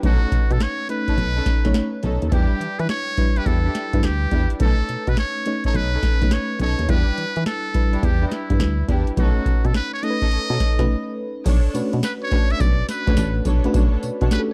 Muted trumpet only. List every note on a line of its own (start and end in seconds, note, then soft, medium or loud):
0.06 0.54 F#4 medium
0.52 0.64 A4 medium
0.62 0.90 C#5 loud
0.90 2.00 B4 loud
2.29 2.34 A4 medium
2.33 2.81 G4 loud
2.80 2.89 B4 medium
2.90 3.39 C#5 loud
3.37 3.48 B4 loud
3.46 4.06 A4 loud
4.05 4.51 G4 medium
4.61 5.10 A4 medium
5.09 5.18 B4 medium
5.19 5.62 C#5 loud
5.66 5.77 C#5 loud
5.76 6.35 B4 loud
6.33 6.61 C#5 medium
6.62 6.91 C#5 loud
6.90 7.46 B4 loud
7.46 8.06 A4 loud
8.04 8.27 G4 medium
8.27 8.35 D#4 medium
8.34 8.90 E4 medium
9.19 9.67 F#4 medium
9.66 9.75 A4 medium
9.76 9.93 B4 loud
9.93 10.05 C#5 loud
10.03 11.17 D#5 loud
12.04 12.12 B4 medium
12.23 12.53 C#5 loud
12.51 12.62 E5 loud
12.61 12.89 D5 loud
12.89 13.42 B4 medium
14.33 14.41 B4 medium